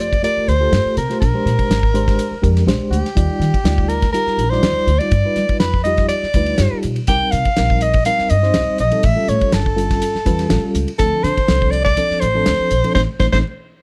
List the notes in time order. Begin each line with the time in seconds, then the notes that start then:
Already playing: F2 A3 F4 G4 C5
0.00 D5, hi-hat pedal, ride
0.13 kick, ride
0.23 A3 F4 G4 A#4 D5, hi-hat pedal, ride
0.37 muted upright bass stroke
0.48 D2 C5, hi-hat pedal, ride
0.60 A3 F4 G4 A4
0.72 G2, snare, hi-hat pedal, ride
0.85 muted upright bass stroke
0.97 C3 A#4, hi-hat pedal, ride
1.09 A3 F4 G4 C5, snare, ride
1.20 A#1 A#4, kick, hi-hat pedal, ride
1.34 G#3 D4 G4 C5
1.46 A#2, snare, hi-hat pedal, ride
1.59 muted upright bass stroke, kick, ride
1.69 G#1, snare, hi-hat pedal, ride
1.83 kick
1.94 G#3 D4 G4 C5, hi-hat pedal, ride
2.08 kick, snare, ride
2.19 hi-hat pedal, ride
2.31 muted upright bass stroke
2.42 F2 G#3 D4 G4 A#4, kick, hi-hat pedal, ride
2.57 snare, ride
2.66 A#1 G#3 D4 G4 C5, snare, hi-hat pedal, ride
2.79 muted upright bass stroke
2.90 D2 G4, hi-hat pedal, ride
3.06 snare, ride
3.15 D#2 G3 D#4 F4 D5, kick, hi-hat pedal, ride
3.40 D#3, snare, hi-hat pedal, ride
3.54 muted upright bass stroke, kick, ride
3.64 D2 G3 D#4 F4 D5, snare, hi-hat pedal, ride
3.78 kick
3.88 A#4, hi-hat pedal, ride
4.02 kick, snare, ride
4.12 G3 D#4 F4 G4 A#4, hi-hat pedal, ride
4.27 muted upright bass stroke, snare
4.37 A#1, hi-hat pedal, ride
4.50 G3 D#4 F4 C5 D5, snare
4.63 D#2, snare, hi-hat pedal, ride
4.76 muted upright bass stroke
4.87 D2, hi-hat pedal, ride
4.99 G3 D#4 F4 D5, ride
5.11 G2, kick, hi-hat pedal, ride
5.25 G3 D#4 F4 B4
5.36 G3, snare, hi-hat pedal, ride
5.49 muted upright bass stroke, kick, ride
5.60 F2 B4, snare, hi-hat pedal, ride
5.74 kick
5.83 G3 D#4 F4 G4 D#5, hi-hat pedal, ride
5.97 kick, snare, ride
6.08 D5, hi-hat pedal, ride
6.23 muted upright bass stroke, snare
6.34 D2 G3 D#4 F4 B4, kick, hi-hat pedal, ride
6.46 ride
6.58 G2 G3 D#4 F4 G4, snare, hi-hat pedal, ride
6.72 muted upright bass stroke
6.83 B2, hi-hat pedal, ride
6.96 ride
7.07 C2 G3 C4 D#4 A#4 G5, kick, hi-hat pedal, ride
7.31 C3 F5, snare, hi-hat pedal, ride
7.45 kick, ride
7.56 A#1 G3 C4 D#4 A#4, snare, hi-hat pedal, ride
7.70 kick
7.81 D#5, hi-hat pedal, ride
7.93 kick, ride
8.05 G3 C4 D#4 A#4 F5, hi-hat pedal, ride
8.19 muted upright bass stroke, snare
8.30 G2 D#5, hi-hat pedal, ride
8.42 G3 C4 D#4 C5, snare
8.54 C2, snare, hi-hat pedal, ride
8.68 muted upright bass stroke
8.78 A#1 D#5, hi-hat pedal, ride
8.91 G3 C4 D#4 A4, ride
9.03 A1 E5, kick, hi-hat pedal, ride
9.15 G3 C#4 F4 A4
9.28 A2 C#5, hi-hat pedal, ride
9.41 muted upright bass stroke, kick, ride
9.52 G1 A4, snare, hi-hat pedal, ride
9.66 kick
9.76 G3 C#4 F4 A4, hi-hat pedal, ride
9.91 kick, snare, ride
10.02 hi-hat pedal, ride
10.15 muted upright bass stroke, snare
10.26 E2 G3 C#4 F4 B4, kick, hi-hat pedal, ride
10.39 snare, ride
10.49 A1 G3 C#4 F4 A4, snare, hi-hat pedal, ride
10.74 C#2, hi-hat pedal, ride
10.88 ride
10.98 D2 F3 C4 D4 A4, kick, hi-hat pedal, ride
11.23 D3 C5, snare, hi-hat pedal, ride
11.37 muted upright bass stroke, kick, ride
11.48 C2 F3 C4 D4 A4, snare, hi-hat pedal, ride
11.62 kick
11.71 D5, hi-hat pedal, ride
11.84 D5, kick, snare, ride
11.97 F3 C4 D4 A4, hi-hat pedal, ride
12.10 muted upright bass stroke, snare
12.20 A1 C5, hi-hat pedal, ride
12.34 F3 C4 D4 A4
12.46 D2, snare, hi-hat pedal, ride
12.60 muted upright bass stroke
12.71 A#1, hi-hat pedal, ride
12.84 F3 C4 D4 A4, ride
12.94 A1 A3 C4 D#4 C5, kick, snare
13.19 A1 A3 C4 D#4 C5, kick, snare
13.32 A1 A3 C4 D#4 C5, kick, snare